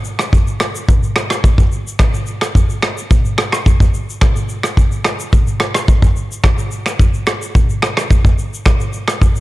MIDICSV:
0, 0, Header, 1, 2, 480
1, 0, Start_track
1, 0, Tempo, 555556
1, 1722, Time_signature, 4, 2, 24, 8
1, 8122, End_track
2, 0, Start_track
2, 0, Title_t, "Drums"
2, 38, Note_on_c, 9, 82, 59
2, 124, Note_off_c, 9, 82, 0
2, 163, Note_on_c, 9, 26, 63
2, 167, Note_on_c, 9, 37, 82
2, 173, Note_on_c, 9, 82, 87
2, 250, Note_off_c, 9, 26, 0
2, 254, Note_off_c, 9, 37, 0
2, 260, Note_off_c, 9, 82, 0
2, 283, Note_on_c, 9, 36, 89
2, 291, Note_on_c, 9, 82, 65
2, 370, Note_off_c, 9, 36, 0
2, 378, Note_off_c, 9, 82, 0
2, 408, Note_on_c, 9, 82, 45
2, 494, Note_off_c, 9, 82, 0
2, 518, Note_on_c, 9, 26, 71
2, 522, Note_on_c, 9, 82, 53
2, 523, Note_on_c, 9, 37, 94
2, 605, Note_off_c, 9, 26, 0
2, 609, Note_off_c, 9, 37, 0
2, 609, Note_off_c, 9, 82, 0
2, 652, Note_on_c, 9, 82, 92
2, 738, Note_off_c, 9, 82, 0
2, 765, Note_on_c, 9, 36, 113
2, 769, Note_on_c, 9, 82, 72
2, 851, Note_off_c, 9, 36, 0
2, 856, Note_off_c, 9, 82, 0
2, 892, Note_on_c, 9, 82, 53
2, 978, Note_off_c, 9, 82, 0
2, 999, Note_on_c, 9, 26, 78
2, 1004, Note_on_c, 9, 37, 96
2, 1010, Note_on_c, 9, 82, 51
2, 1086, Note_off_c, 9, 26, 0
2, 1090, Note_off_c, 9, 37, 0
2, 1097, Note_off_c, 9, 82, 0
2, 1125, Note_on_c, 9, 26, 77
2, 1129, Note_on_c, 9, 37, 92
2, 1136, Note_on_c, 9, 82, 93
2, 1211, Note_off_c, 9, 26, 0
2, 1215, Note_off_c, 9, 37, 0
2, 1222, Note_off_c, 9, 82, 0
2, 1244, Note_on_c, 9, 36, 95
2, 1248, Note_on_c, 9, 82, 67
2, 1330, Note_off_c, 9, 36, 0
2, 1335, Note_off_c, 9, 82, 0
2, 1366, Note_on_c, 9, 36, 86
2, 1374, Note_on_c, 9, 82, 55
2, 1452, Note_off_c, 9, 36, 0
2, 1460, Note_off_c, 9, 82, 0
2, 1486, Note_on_c, 9, 82, 54
2, 1573, Note_off_c, 9, 82, 0
2, 1620, Note_on_c, 9, 82, 82
2, 1707, Note_off_c, 9, 82, 0
2, 1721, Note_on_c, 9, 26, 75
2, 1723, Note_on_c, 9, 36, 108
2, 1724, Note_on_c, 9, 82, 67
2, 1725, Note_on_c, 9, 37, 88
2, 1807, Note_off_c, 9, 26, 0
2, 1810, Note_off_c, 9, 36, 0
2, 1811, Note_off_c, 9, 37, 0
2, 1811, Note_off_c, 9, 82, 0
2, 1850, Note_on_c, 9, 82, 63
2, 1936, Note_off_c, 9, 82, 0
2, 1959, Note_on_c, 9, 82, 58
2, 2046, Note_off_c, 9, 82, 0
2, 2085, Note_on_c, 9, 26, 66
2, 2089, Note_on_c, 9, 37, 80
2, 2095, Note_on_c, 9, 82, 85
2, 2171, Note_off_c, 9, 26, 0
2, 2175, Note_off_c, 9, 37, 0
2, 2181, Note_off_c, 9, 82, 0
2, 2204, Note_on_c, 9, 36, 86
2, 2213, Note_on_c, 9, 82, 68
2, 2291, Note_off_c, 9, 36, 0
2, 2299, Note_off_c, 9, 82, 0
2, 2329, Note_on_c, 9, 82, 44
2, 2416, Note_off_c, 9, 82, 0
2, 2441, Note_on_c, 9, 26, 74
2, 2445, Note_on_c, 9, 37, 97
2, 2445, Note_on_c, 9, 82, 53
2, 2527, Note_off_c, 9, 26, 0
2, 2531, Note_off_c, 9, 37, 0
2, 2531, Note_off_c, 9, 82, 0
2, 2574, Note_on_c, 9, 82, 90
2, 2660, Note_off_c, 9, 82, 0
2, 2685, Note_on_c, 9, 36, 110
2, 2690, Note_on_c, 9, 82, 73
2, 2771, Note_off_c, 9, 36, 0
2, 2776, Note_off_c, 9, 82, 0
2, 2811, Note_on_c, 9, 82, 52
2, 2897, Note_off_c, 9, 82, 0
2, 2919, Note_on_c, 9, 26, 78
2, 2924, Note_on_c, 9, 37, 96
2, 2930, Note_on_c, 9, 82, 54
2, 3006, Note_off_c, 9, 26, 0
2, 3010, Note_off_c, 9, 37, 0
2, 3017, Note_off_c, 9, 82, 0
2, 3045, Note_on_c, 9, 26, 76
2, 3049, Note_on_c, 9, 37, 89
2, 3056, Note_on_c, 9, 82, 92
2, 3131, Note_off_c, 9, 26, 0
2, 3136, Note_off_c, 9, 37, 0
2, 3142, Note_off_c, 9, 82, 0
2, 3163, Note_on_c, 9, 36, 96
2, 3168, Note_on_c, 9, 82, 73
2, 3250, Note_off_c, 9, 36, 0
2, 3254, Note_off_c, 9, 82, 0
2, 3286, Note_on_c, 9, 36, 85
2, 3294, Note_on_c, 9, 82, 53
2, 3372, Note_off_c, 9, 36, 0
2, 3380, Note_off_c, 9, 82, 0
2, 3405, Note_on_c, 9, 82, 54
2, 3491, Note_off_c, 9, 82, 0
2, 3540, Note_on_c, 9, 82, 82
2, 3626, Note_off_c, 9, 82, 0
2, 3640, Note_on_c, 9, 26, 72
2, 3643, Note_on_c, 9, 36, 114
2, 3644, Note_on_c, 9, 82, 70
2, 3645, Note_on_c, 9, 37, 86
2, 3727, Note_off_c, 9, 26, 0
2, 3729, Note_off_c, 9, 36, 0
2, 3730, Note_off_c, 9, 82, 0
2, 3731, Note_off_c, 9, 37, 0
2, 3768, Note_on_c, 9, 82, 63
2, 3854, Note_off_c, 9, 82, 0
2, 3880, Note_on_c, 9, 82, 58
2, 3966, Note_off_c, 9, 82, 0
2, 4004, Note_on_c, 9, 26, 66
2, 4008, Note_on_c, 9, 37, 81
2, 4014, Note_on_c, 9, 82, 89
2, 4090, Note_off_c, 9, 26, 0
2, 4095, Note_off_c, 9, 37, 0
2, 4100, Note_off_c, 9, 82, 0
2, 4123, Note_on_c, 9, 36, 88
2, 4131, Note_on_c, 9, 82, 67
2, 4210, Note_off_c, 9, 36, 0
2, 4218, Note_off_c, 9, 82, 0
2, 4248, Note_on_c, 9, 82, 46
2, 4335, Note_off_c, 9, 82, 0
2, 4359, Note_on_c, 9, 26, 76
2, 4363, Note_on_c, 9, 37, 93
2, 4363, Note_on_c, 9, 82, 53
2, 4445, Note_off_c, 9, 26, 0
2, 4449, Note_off_c, 9, 82, 0
2, 4450, Note_off_c, 9, 37, 0
2, 4492, Note_on_c, 9, 82, 88
2, 4578, Note_off_c, 9, 82, 0
2, 4603, Note_on_c, 9, 36, 112
2, 4606, Note_on_c, 9, 82, 71
2, 4690, Note_off_c, 9, 36, 0
2, 4693, Note_off_c, 9, 82, 0
2, 4729, Note_on_c, 9, 82, 53
2, 4815, Note_off_c, 9, 82, 0
2, 4837, Note_on_c, 9, 26, 76
2, 4842, Note_on_c, 9, 37, 96
2, 4848, Note_on_c, 9, 82, 53
2, 4924, Note_off_c, 9, 26, 0
2, 4928, Note_off_c, 9, 37, 0
2, 4934, Note_off_c, 9, 82, 0
2, 4963, Note_on_c, 9, 26, 74
2, 4968, Note_on_c, 9, 37, 98
2, 4974, Note_on_c, 9, 82, 90
2, 5050, Note_off_c, 9, 26, 0
2, 5054, Note_off_c, 9, 37, 0
2, 5061, Note_off_c, 9, 82, 0
2, 5082, Note_on_c, 9, 36, 102
2, 5086, Note_on_c, 9, 82, 69
2, 5169, Note_off_c, 9, 36, 0
2, 5172, Note_off_c, 9, 82, 0
2, 5205, Note_on_c, 9, 36, 85
2, 5211, Note_on_c, 9, 82, 55
2, 5291, Note_off_c, 9, 36, 0
2, 5298, Note_off_c, 9, 82, 0
2, 5325, Note_on_c, 9, 82, 56
2, 5412, Note_off_c, 9, 82, 0
2, 5459, Note_on_c, 9, 82, 85
2, 5546, Note_off_c, 9, 82, 0
2, 5561, Note_on_c, 9, 26, 71
2, 5563, Note_on_c, 9, 36, 112
2, 5565, Note_on_c, 9, 37, 90
2, 5565, Note_on_c, 9, 82, 70
2, 5647, Note_off_c, 9, 26, 0
2, 5649, Note_off_c, 9, 36, 0
2, 5651, Note_off_c, 9, 37, 0
2, 5651, Note_off_c, 9, 82, 0
2, 5689, Note_on_c, 9, 82, 60
2, 5776, Note_off_c, 9, 82, 0
2, 5800, Note_on_c, 9, 82, 59
2, 5887, Note_off_c, 9, 82, 0
2, 5925, Note_on_c, 9, 26, 65
2, 5930, Note_on_c, 9, 37, 81
2, 5936, Note_on_c, 9, 82, 91
2, 6012, Note_off_c, 9, 26, 0
2, 6016, Note_off_c, 9, 37, 0
2, 6022, Note_off_c, 9, 82, 0
2, 6044, Note_on_c, 9, 36, 92
2, 6052, Note_on_c, 9, 82, 69
2, 6130, Note_off_c, 9, 36, 0
2, 6139, Note_off_c, 9, 82, 0
2, 6169, Note_on_c, 9, 82, 47
2, 6255, Note_off_c, 9, 82, 0
2, 6279, Note_on_c, 9, 26, 73
2, 6284, Note_on_c, 9, 37, 94
2, 6284, Note_on_c, 9, 82, 55
2, 6366, Note_off_c, 9, 26, 0
2, 6370, Note_off_c, 9, 37, 0
2, 6370, Note_off_c, 9, 82, 0
2, 6412, Note_on_c, 9, 82, 88
2, 6499, Note_off_c, 9, 82, 0
2, 6524, Note_on_c, 9, 36, 112
2, 6529, Note_on_c, 9, 82, 70
2, 6610, Note_off_c, 9, 36, 0
2, 6615, Note_off_c, 9, 82, 0
2, 6650, Note_on_c, 9, 82, 52
2, 6737, Note_off_c, 9, 82, 0
2, 6759, Note_on_c, 9, 26, 78
2, 6764, Note_on_c, 9, 37, 98
2, 6770, Note_on_c, 9, 82, 54
2, 6846, Note_off_c, 9, 26, 0
2, 6850, Note_off_c, 9, 37, 0
2, 6857, Note_off_c, 9, 82, 0
2, 6886, Note_on_c, 9, 26, 78
2, 6890, Note_on_c, 9, 37, 92
2, 6897, Note_on_c, 9, 82, 87
2, 6972, Note_off_c, 9, 26, 0
2, 6977, Note_off_c, 9, 37, 0
2, 6984, Note_off_c, 9, 82, 0
2, 7003, Note_on_c, 9, 36, 97
2, 7008, Note_on_c, 9, 82, 69
2, 7089, Note_off_c, 9, 36, 0
2, 7094, Note_off_c, 9, 82, 0
2, 7125, Note_on_c, 9, 36, 85
2, 7132, Note_on_c, 9, 82, 55
2, 7212, Note_off_c, 9, 36, 0
2, 7218, Note_off_c, 9, 82, 0
2, 7245, Note_on_c, 9, 82, 54
2, 7331, Note_off_c, 9, 82, 0
2, 7378, Note_on_c, 9, 82, 86
2, 7464, Note_off_c, 9, 82, 0
2, 7478, Note_on_c, 9, 26, 72
2, 7482, Note_on_c, 9, 36, 107
2, 7482, Note_on_c, 9, 82, 74
2, 7483, Note_on_c, 9, 37, 92
2, 7565, Note_off_c, 9, 26, 0
2, 7568, Note_off_c, 9, 36, 0
2, 7569, Note_off_c, 9, 37, 0
2, 7569, Note_off_c, 9, 82, 0
2, 7606, Note_on_c, 9, 82, 61
2, 7693, Note_off_c, 9, 82, 0
2, 7716, Note_on_c, 9, 82, 58
2, 7802, Note_off_c, 9, 82, 0
2, 7841, Note_on_c, 9, 26, 67
2, 7846, Note_on_c, 9, 37, 81
2, 7852, Note_on_c, 9, 82, 88
2, 7928, Note_off_c, 9, 26, 0
2, 7932, Note_off_c, 9, 37, 0
2, 7938, Note_off_c, 9, 82, 0
2, 7962, Note_on_c, 9, 36, 86
2, 7968, Note_on_c, 9, 82, 67
2, 8048, Note_off_c, 9, 36, 0
2, 8055, Note_off_c, 9, 82, 0
2, 8085, Note_on_c, 9, 82, 48
2, 8122, Note_off_c, 9, 82, 0
2, 8122, End_track
0, 0, End_of_file